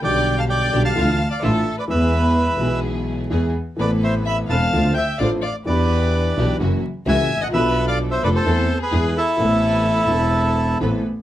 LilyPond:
<<
  \new Staff \with { instrumentName = "Bandoneon" } { \time 4/4 \key a \minor \tempo 4 = 128 <d'' g''>8. <f'' a''>16 <d'' g''>8. <f'' a''>4 <d'' f''>16 <a' e''>8. <b' d''>16 | <b' e''>2 r2 | <b' d''>8 <c'' e''>8 <e'' b''>8 <f'' a''>4 <e'' g''>8 <d'' f''>8 <d'' f''>8 | <b' d''>2 r4 <e'' gis''>8. <dis'' fis''>16 |
<b' e''>8. <d'' f''>8 <c'' e''>16 <b' d''>16 <a' c''>4 <gis' b'>8. <e' a'>8~ | <e' a'>2. r4 | }
  \new Staff \with { instrumentName = "Violin" } { \time 4/4 \key a \minor d''8. f''16 d''8. f''4 d''16 a'8. b'16 | b'2 r2 | b'8 c''8 e''8 f''4 e''8 d''8 d''8 | b'2 r4 e''8. dis''16 |
b'8. d''8 c''16 b'16 a'4 gis'8. e'8~ | e'2. r4 | }
  \new Staff \with { instrumentName = "String section" } { \time 4/4 \key a \minor <b d' g'>4. <b d' g'>8 <d' e' f'>8 r8 <d' e' f'>8 r8 | <b e' gis'>4. <b e' gis'>4. <b e' gis'>8 r8 | <a' b'>4. <c' a' b'>8 <d' f' c''>8 r8 <d' f' c''>8 r8 | <d' e' g'>4. <d' e' g'>8 <ais e' fis'>8 r8 <ais e' fis'>8 r8 |
<b d' a'>4. <b d' a'>8 <c' e' a'>8 r8 <b e' gis'>8 r8 | <a' b'>4. <a' b'>4. <c' a' b'>8 r8 | }
  \new Staff \with { instrumentName = "Grand piano" } { \clef bass \time 4/4 \key a \minor <b,, b, d g b g'>4. <b,, b, d g b g'>8 <d, d e a d' f'>8 r8 <a,, a, e a d' f'>8 r8 | <e, e gis b gis'>4. <b,, b, e gis b gis'>4. <e, e gis b gis'>8 r8 | <a,, a, e b c' a'>4. <e,, e, e b c' a'>8 <d, d f c' d' a'>8 r8 <a,, a, f c' d' a'>8 r8 | <e, e b d' g'>4. <b,, b, e b d' g'>8 <fis, e fis ais cis' fis'>8 r8 <cis, cis e ais cis' fis'>8 r32 gis,,32 a,,32 ais,,32 |
<b,, b, f b d' a'>4. <f,, f, f b d' a'>8 <e, e a c' a'>8 r8 <e, e gis b gis'>8 r8 | <a,, a, e b c' a'>4. <e,, e, e b c' a'>4. <a,, a, e b c' a'>8 r8 | }
  \new Staff \with { instrumentName = "Double bass" } { \clef bass \time 4/4 \key a \minor b,,4. b,,8 d,8 r8 a,,8 r8 | e,4. b,,4. e,8 r8 | a,,4. e,,8 d,8 r8 a,,8 r8 | e,4. b,,8 fis,,8 r8 cis,8 a,,8 |
b,,4. f,,8 e,8 r8 e,8 r8 | a,,4. e,,4. a,,8 r8 | }
>>